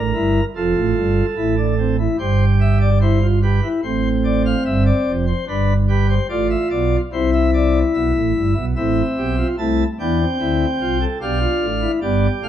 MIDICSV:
0, 0, Header, 1, 2, 480
1, 0, Start_track
1, 0, Tempo, 820793
1, 1281, Time_signature, 4, 2, 24, 8
1, 5609, Tempo, 810811
1, 7323, End_track
2, 0, Start_track
2, 0, Title_t, "Pipe organ"
2, 0, Program_c, 0, 19
2, 0, Note_on_c, 0, 33, 71
2, 0, Note_on_c, 0, 45, 77
2, 0, Note_on_c, 0, 70, 78
2, 72, Note_off_c, 0, 33, 0
2, 72, Note_off_c, 0, 45, 0
2, 86, Note_on_c, 0, 31, 78
2, 86, Note_on_c, 0, 64, 72
2, 87, Note_on_c, 0, 43, 80
2, 234, Note_off_c, 0, 31, 0
2, 234, Note_off_c, 0, 64, 0
2, 235, Note_off_c, 0, 43, 0
2, 259, Note_off_c, 0, 70, 0
2, 326, Note_on_c, 0, 69, 72
2, 327, Note_on_c, 0, 29, 73
2, 327, Note_on_c, 0, 41, 83
2, 327, Note_on_c, 0, 65, 71
2, 428, Note_off_c, 0, 41, 0
2, 429, Note_off_c, 0, 29, 0
2, 445, Note_on_c, 0, 33, 96
2, 445, Note_on_c, 0, 45, 94
2, 547, Note_off_c, 0, 33, 0
2, 547, Note_off_c, 0, 45, 0
2, 564, Note_on_c, 0, 43, 83
2, 565, Note_on_c, 0, 31, 81
2, 712, Note_off_c, 0, 31, 0
2, 712, Note_off_c, 0, 43, 0
2, 736, Note_off_c, 0, 65, 0
2, 801, Note_on_c, 0, 64, 72
2, 802, Note_on_c, 0, 33, 82
2, 803, Note_on_c, 0, 45, 84
2, 904, Note_off_c, 0, 64, 0
2, 917, Note_on_c, 0, 62, 76
2, 1022, Note_off_c, 0, 62, 0
2, 1041, Note_on_c, 0, 60, 78
2, 1144, Note_off_c, 0, 60, 0
2, 1148, Note_off_c, 0, 69, 0
2, 1163, Note_on_c, 0, 64, 72
2, 1215, Note_off_c, 0, 33, 0
2, 1215, Note_off_c, 0, 45, 0
2, 1266, Note_off_c, 0, 64, 0
2, 1281, Note_on_c, 0, 43, 74
2, 1281, Note_on_c, 0, 72, 97
2, 1282, Note_on_c, 0, 67, 83
2, 1283, Note_on_c, 0, 31, 75
2, 1430, Note_off_c, 0, 72, 0
2, 1526, Note_on_c, 0, 76, 96
2, 1627, Note_off_c, 0, 76, 0
2, 1645, Note_on_c, 0, 74, 84
2, 1694, Note_off_c, 0, 67, 0
2, 1746, Note_off_c, 0, 74, 0
2, 1761, Note_on_c, 0, 64, 83
2, 1762, Note_on_c, 0, 72, 99
2, 1863, Note_off_c, 0, 64, 0
2, 1882, Note_on_c, 0, 65, 62
2, 1910, Note_off_c, 0, 72, 0
2, 1984, Note_off_c, 0, 65, 0
2, 2002, Note_on_c, 0, 71, 76
2, 2003, Note_on_c, 0, 67, 67
2, 2105, Note_off_c, 0, 43, 0
2, 2105, Note_off_c, 0, 67, 0
2, 2106, Note_off_c, 0, 31, 0
2, 2123, Note_on_c, 0, 64, 74
2, 2150, Note_off_c, 0, 71, 0
2, 2225, Note_off_c, 0, 64, 0
2, 2242, Note_on_c, 0, 45, 72
2, 2242, Note_on_c, 0, 72, 80
2, 2244, Note_on_c, 0, 33, 70
2, 2245, Note_on_c, 0, 60, 76
2, 2391, Note_off_c, 0, 72, 0
2, 2484, Note_on_c, 0, 74, 88
2, 2587, Note_off_c, 0, 74, 0
2, 2604, Note_on_c, 0, 77, 89
2, 2658, Note_off_c, 0, 45, 0
2, 2659, Note_off_c, 0, 33, 0
2, 2708, Note_off_c, 0, 77, 0
2, 2723, Note_on_c, 0, 31, 69
2, 2724, Note_on_c, 0, 43, 71
2, 2724, Note_on_c, 0, 76, 82
2, 2828, Note_off_c, 0, 76, 0
2, 2843, Note_on_c, 0, 74, 98
2, 2873, Note_off_c, 0, 31, 0
2, 2873, Note_off_c, 0, 43, 0
2, 2968, Note_on_c, 0, 29, 75
2, 2968, Note_on_c, 0, 41, 70
2, 2993, Note_off_c, 0, 74, 0
2, 3072, Note_off_c, 0, 60, 0
2, 3083, Note_on_c, 0, 72, 82
2, 3115, Note_off_c, 0, 29, 0
2, 3115, Note_off_c, 0, 41, 0
2, 3186, Note_off_c, 0, 72, 0
2, 3203, Note_on_c, 0, 31, 72
2, 3204, Note_on_c, 0, 62, 73
2, 3205, Note_on_c, 0, 43, 83
2, 3205, Note_on_c, 0, 71, 86
2, 3352, Note_off_c, 0, 62, 0
2, 3353, Note_off_c, 0, 71, 0
2, 3442, Note_on_c, 0, 67, 82
2, 3445, Note_on_c, 0, 71, 93
2, 3547, Note_off_c, 0, 71, 0
2, 3563, Note_on_c, 0, 72, 89
2, 3591, Note_off_c, 0, 67, 0
2, 3615, Note_off_c, 0, 31, 0
2, 3616, Note_off_c, 0, 43, 0
2, 3666, Note_off_c, 0, 72, 0
2, 3683, Note_on_c, 0, 33, 76
2, 3683, Note_on_c, 0, 74, 89
2, 3685, Note_on_c, 0, 45, 81
2, 3685, Note_on_c, 0, 65, 79
2, 3786, Note_off_c, 0, 74, 0
2, 3804, Note_on_c, 0, 76, 80
2, 3832, Note_off_c, 0, 33, 0
2, 3833, Note_off_c, 0, 45, 0
2, 3907, Note_off_c, 0, 76, 0
2, 3923, Note_on_c, 0, 47, 67
2, 3923, Note_on_c, 0, 74, 79
2, 3925, Note_on_c, 0, 35, 70
2, 4072, Note_off_c, 0, 47, 0
2, 4072, Note_off_c, 0, 74, 0
2, 4074, Note_off_c, 0, 35, 0
2, 4098, Note_off_c, 0, 65, 0
2, 4167, Note_on_c, 0, 36, 70
2, 4167, Note_on_c, 0, 48, 69
2, 4167, Note_on_c, 0, 64, 73
2, 4169, Note_on_c, 0, 72, 76
2, 4270, Note_off_c, 0, 72, 0
2, 4286, Note_on_c, 0, 76, 95
2, 4389, Note_off_c, 0, 76, 0
2, 4409, Note_on_c, 0, 74, 88
2, 4557, Note_off_c, 0, 74, 0
2, 4580, Note_off_c, 0, 36, 0
2, 4580, Note_off_c, 0, 48, 0
2, 4645, Note_on_c, 0, 35, 73
2, 4645, Note_on_c, 0, 47, 71
2, 4645, Note_on_c, 0, 76, 89
2, 4748, Note_off_c, 0, 47, 0
2, 4749, Note_off_c, 0, 35, 0
2, 4767, Note_on_c, 0, 45, 77
2, 4768, Note_on_c, 0, 33, 76
2, 4870, Note_off_c, 0, 45, 0
2, 4871, Note_off_c, 0, 33, 0
2, 4889, Note_on_c, 0, 43, 70
2, 4891, Note_on_c, 0, 31, 76
2, 4991, Note_off_c, 0, 43, 0
2, 4992, Note_off_c, 0, 31, 0
2, 4994, Note_off_c, 0, 64, 0
2, 5005, Note_on_c, 0, 35, 63
2, 5006, Note_on_c, 0, 47, 68
2, 5060, Note_off_c, 0, 76, 0
2, 5109, Note_off_c, 0, 35, 0
2, 5110, Note_off_c, 0, 47, 0
2, 5124, Note_on_c, 0, 76, 62
2, 5125, Note_on_c, 0, 64, 70
2, 5126, Note_on_c, 0, 33, 60
2, 5126, Note_on_c, 0, 60, 60
2, 5127, Note_on_c, 0, 45, 62
2, 5275, Note_off_c, 0, 33, 0
2, 5275, Note_off_c, 0, 64, 0
2, 5276, Note_off_c, 0, 45, 0
2, 5366, Note_on_c, 0, 35, 61
2, 5366, Note_on_c, 0, 47, 62
2, 5367, Note_on_c, 0, 67, 66
2, 5471, Note_off_c, 0, 67, 0
2, 5482, Note_on_c, 0, 65, 56
2, 5515, Note_off_c, 0, 47, 0
2, 5516, Note_off_c, 0, 35, 0
2, 5539, Note_off_c, 0, 76, 0
2, 5540, Note_off_c, 0, 60, 0
2, 5588, Note_off_c, 0, 65, 0
2, 5604, Note_on_c, 0, 36, 64
2, 5604, Note_on_c, 0, 48, 61
2, 5604, Note_on_c, 0, 81, 69
2, 5605, Note_on_c, 0, 57, 60
2, 5605, Note_on_c, 0, 64, 68
2, 5755, Note_off_c, 0, 36, 0
2, 5755, Note_off_c, 0, 48, 0
2, 5755, Note_off_c, 0, 81, 0
2, 5756, Note_off_c, 0, 57, 0
2, 5756, Note_off_c, 0, 64, 0
2, 5847, Note_on_c, 0, 52, 54
2, 5847, Note_on_c, 0, 62, 61
2, 5848, Note_on_c, 0, 40, 61
2, 5848, Note_on_c, 0, 79, 57
2, 5849, Note_on_c, 0, 59, 56
2, 5953, Note_off_c, 0, 59, 0
2, 5969, Note_on_c, 0, 60, 56
2, 5997, Note_off_c, 0, 52, 0
2, 5997, Note_off_c, 0, 62, 0
2, 5998, Note_off_c, 0, 40, 0
2, 6087, Note_on_c, 0, 50, 57
2, 6087, Note_on_c, 0, 64, 63
2, 6088, Note_on_c, 0, 38, 59
2, 6237, Note_off_c, 0, 50, 0
2, 6237, Note_off_c, 0, 64, 0
2, 6238, Note_off_c, 0, 38, 0
2, 6328, Note_on_c, 0, 48, 62
2, 6329, Note_on_c, 0, 36, 59
2, 6329, Note_on_c, 0, 65, 69
2, 6432, Note_off_c, 0, 65, 0
2, 6448, Note_on_c, 0, 69, 68
2, 6468, Note_off_c, 0, 79, 0
2, 6477, Note_off_c, 0, 36, 0
2, 6477, Note_off_c, 0, 48, 0
2, 6485, Note_off_c, 0, 60, 0
2, 6551, Note_off_c, 0, 69, 0
2, 6568, Note_on_c, 0, 35, 62
2, 6568, Note_on_c, 0, 47, 60
2, 6568, Note_on_c, 0, 67, 69
2, 6568, Note_on_c, 0, 77, 64
2, 6569, Note_on_c, 0, 62, 67
2, 6671, Note_off_c, 0, 67, 0
2, 6685, Note_on_c, 0, 65, 80
2, 6717, Note_off_c, 0, 35, 0
2, 6717, Note_off_c, 0, 47, 0
2, 6807, Note_on_c, 0, 45, 62
2, 6808, Note_on_c, 0, 33, 64
2, 6834, Note_off_c, 0, 65, 0
2, 6926, Note_on_c, 0, 64, 67
2, 6956, Note_off_c, 0, 45, 0
2, 6957, Note_off_c, 0, 33, 0
2, 6981, Note_off_c, 0, 62, 0
2, 6981, Note_off_c, 0, 77, 0
2, 7030, Note_off_c, 0, 64, 0
2, 7046, Note_on_c, 0, 43, 69
2, 7046, Note_on_c, 0, 67, 69
2, 7046, Note_on_c, 0, 74, 77
2, 7047, Note_on_c, 0, 31, 66
2, 7047, Note_on_c, 0, 59, 67
2, 7196, Note_off_c, 0, 31, 0
2, 7196, Note_off_c, 0, 43, 0
2, 7196, Note_off_c, 0, 59, 0
2, 7196, Note_off_c, 0, 74, 0
2, 7287, Note_on_c, 0, 33, 75
2, 7289, Note_on_c, 0, 45, 71
2, 7289, Note_on_c, 0, 57, 68
2, 7290, Note_on_c, 0, 77, 85
2, 7323, Note_off_c, 0, 33, 0
2, 7323, Note_off_c, 0, 45, 0
2, 7323, Note_off_c, 0, 57, 0
2, 7323, Note_off_c, 0, 67, 0
2, 7323, Note_off_c, 0, 77, 0
2, 7323, End_track
0, 0, End_of_file